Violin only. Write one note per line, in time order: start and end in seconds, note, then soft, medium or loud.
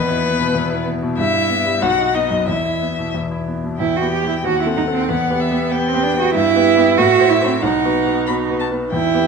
0.00 0.86 B4 medium
1.18 1.84 E5 medium
1.82 2.16 F#5 medium
2.15 2.48 D#5 medium
2.48 3.13 E5 medium
3.81 4.46 G5 soft
4.44 5.08 F#5 soft
5.08 5.41 F#5 medium
5.40 5.73 E5 medium
5.72 6.34 G5 medium
6.35 6.94 E5 medium
6.98 7.64 E5 medium
7.62 8.21 F#5 medium
8.26 8.34 B5 medium
8.60 8.68 A5 medium
8.92 9.27 G5 medium